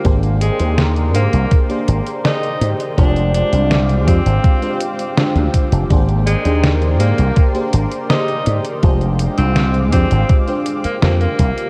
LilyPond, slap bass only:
\new Staff \with { instrumentName = "Slap bass" } { \clef bass \time 4/4 \key f \dorian \tempo 4 = 82 aes,,8 r16 ees,8. aes,16 c,16 r8 aes,,16 r8. aes,16 r16 | f,,8 r16 c,8. f,16 aes,,16 r4 r16 d,16 r16 f,,16 | aes,,8 r16 ees,8. aes,16 c,16 r8 aes,,16 r8. aes,16 r16 | f,,8 r16 c,8. f,16 aes,,16 r4 f,16 r16 c,16 r16 | }